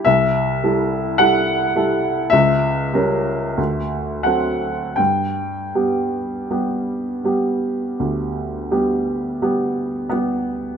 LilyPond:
<<
  \new Staff \with { instrumentName = "Upright piano" } { \time 4/4 \key a \dorian \tempo 4 = 43 e''4 fis''4 e''4. fis''8 | g''2.~ g''8 b8 | }
  \new Staff \with { instrumentName = "Upright piano" } { \time 4/4 \key a \dorian c,8 <g e' a'>8 <g e' a'>8 <g e' a'>8 cis,8 <g cis' ais'>8 d,8 <fis c' a'>8 | g,8 <g b g'>8 <g b g'>8 <g b g'>8 d,8 <g b g'>8 <g b g'>8 <g b g'>8 | }
>>